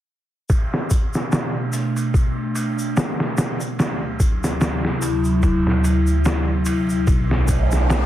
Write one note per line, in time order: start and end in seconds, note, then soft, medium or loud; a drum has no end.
0.49 3.76 B2 medium
0.49 3.76 A3 medium
0.49 3.76 D4 medium
0.49 kick medium
0.49 ride medium
0.49 shaker soft
0.74 snare soft
0.91 kick medium
0.91 ride medium
0.91 shaker medium
1.14 snare soft
1.14 shaker soft
1.32 snare loud
1.32 ride medium
1.32 shaker soft
1.73 open hi-hat medium
1.73 shaker medium
1.96 ride soft
1.96 shaker soft
2.14 kick medium
2.14 ride medium
2.14 shaker soft
2.55 ride medium
2.55 shaker medium
2.79 shaker soft
2.97 snare loud
2.97 ride medium
2.97 shaker soft
3.20 snare medium
3.38 snare medium
3.38 ride medium
3.38 shaker medium
3.61 ride soft
3.61 shaker soft
3.79 7.04 D2 medium
3.79 7.05 C3 medium
3.79 7.05 F#3 medium
3.79 7.04 E4 medium
3.79 snare medium
3.79 ride medium
3.79 shaker soft
4.20 kick medium
4.20 ride medium
4.20 shaker medium
4.44 snare soft
4.44 shaker soft
4.61 snare loud
4.61 ride medium
4.61 shaker soft
4.85 snare soft
5.02 ride medium
5.02 shaker loud
5.24 shaker soft
5.43 kick medium
5.43 ride medium
5.43 shaker soft
5.67 snare soft
5.84 ride medium
5.84 shaker medium
6.07 shaker soft
6.25 snare loud
6.25 ride medium
6.25 shaker soft
6.66 ride medium
6.66 shaker medium
6.89 shaker soft
7.07 8.06 B1 medium
7.07 8.06 B2 medium
7.07 8.06 A3 medium
7.07 8.06 D4 medium
7.07 kick loud
7.07 ride medium
7.07 riser medium
7.07 shaker soft
7.31 snare soft
7.48 kick medium
7.48 ride medium
7.48 shaker medium
7.71 snare soft
7.71 shaker soft
7.90 snare loud
7.90 ride medium
7.90 shaker soft